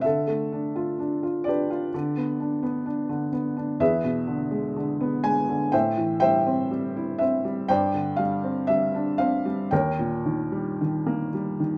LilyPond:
<<
  \new Staff \with { instrumentName = "Felt piano" } { \time 4/4 \key g \mixolydian \tempo 4 = 62 << { e''4. d''2 r8 | e''4. gis''8 g''8 g''4 e''8 | g''8 f''8 e''8 f''8 g''4. r8 | } \\ { a'4. <g' b'>2 r8 | <gis' b'>2 <c'' e''>8 <c'' e''>4. | <c'' d''>2 <bes' des''>2 | } >> }
  \new Staff \with { instrumentName = "Felt piano" } { \clef bass \time 4/4 \key g \mixolydian d16 a16 d'16 f'16 d'16 f'16 d'16 f'16 d16 b16 d'16 b16 d'16 d16 b16 d'16 | e,16 b,16 d16 gis16 d16 b16 gis16 d16 a,16 e16 g16 c'16 g16 e'16 c'16 g16 | g,16 d16 g16 c'16 g16 d'16 c'16 g16 ees,16 bes,16 ees16 g16 ees16 bes16 g16 ees16 | }
>>